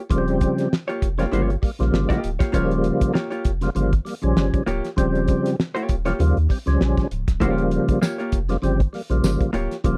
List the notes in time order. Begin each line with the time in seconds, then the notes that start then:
0.10 D#1 C#3 F3 G3 A#3, kick, closed hi-hat
0.18 C4
0.28 closed hi-hat
0.41 kick, closed hi-hat
0.58 snare, closed hi-hat
0.73 snare
0.88 A#3 F4 G4 C#5, closed hi-hat
1.02 F1, kick, closed hi-hat
1.18 C#3 F3 G3 A#3 F4 G4 C#5, snare, closed hi-hat
1.31 G1 C#3 F3 G3 A#3 F4 G4 C#5, closed hi-hat
1.50 closed hi-hat
1.62 G3 A#3, kick, open hi-hat
1.79 A#1 C#3 F3 G3 A#3, snare, closed hi-hat
1.93 G1, snare
2.09 A#3 F4 G4 D#5, kick, snare, closed hi-hat
2.24 D1, closed hi-hat
2.39 A#3 F4 G4 C#5, kick, snare, closed hi-hat
2.52 D#1 C#3 F3 G3 A#3 F4 G4 C#5, kick, closed hi-hat
2.71 closed hi-hat
2.84 closed hi-hat
3.01 kick, closed hi-hat
3.14 A#3 F4 G4 C#5, snare
3.30 A#3 F4 G4 C#5, closed hi-hat
3.45 F1, kick, closed hi-hat
3.61 C#3 F3 G3 A#3, snare, closed hi-hat
3.75 G1 C#3 F3 G3 A#3, closed hi-hat
3.93 kick, closed hi-hat
4.05 G3 A#3, snare, open hi-hat
4.22 A#1 C#3 F3 G3 C#4, closed hi-hat
4.37 G1, snare
4.54 kick, closed hi-hat
4.66 D1 A#3 F4 G4 C#5, closed hi-hat
4.85 snare, closed hi-hat
4.96 D#1 C#3 F3 G3 C4, kick, closed hi-hat
5.15 closed hi-hat
5.28 kick, closed hi-hat
5.46 snare, closed hi-hat
5.60 snare
5.75 A#3 F4 G4 C#5, closed hi-hat
5.89 D#1, kick, closed hi-hat
6.05 C#3 F3 G3 A#3 F4 G4 C#5, snare, closed hi-hat
6.19 D#2 C#3 F3 G3 A#3, closed hi-hat
6.37 D#2, closed hi-hat
6.49 G3 C4, kick, open hi-hat
6.66 C#2 C#3 F3 G3 C#4, snare, closed hi-hat
6.81 A#1, snare
6.97 kick, snare, closed hi-hat
7.11 C#1, closed hi-hat
7.28 D1, kick, snare, closed hi-hat
7.40 D#1 C#3 F3 G3 A#3 F4 G4 C#5, kick, closed hi-hat
7.58 closed hi-hat
7.71 closed hi-hat
7.88 kick, closed hi-hat
8.02 A#3 F4 G4 C#5, snare, tambourine
8.18 A#3 F4 G4 C#5, closed hi-hat
8.32 F1, kick, closed hi-hat
8.49 C#3 F3 G3 A#3, snare, closed hi-hat
8.62 G1 C#3 F3 G3 C4, closed hi-hat
8.80 kick, closed hi-hat
8.93 G3 A#3, snare, open hi-hat
9.10 A#1 C#3 F3 G3 A#3, closed hi-hat
9.23 G1, snare, tambourine
9.41 kick, closed hi-hat
9.53 D1 A#3 F4 G4 C#5, closed hi-hat
9.71 snare, closed hi-hat
9.84 D#1 C#3 F3 G3 A#3, kick, closed hi-hat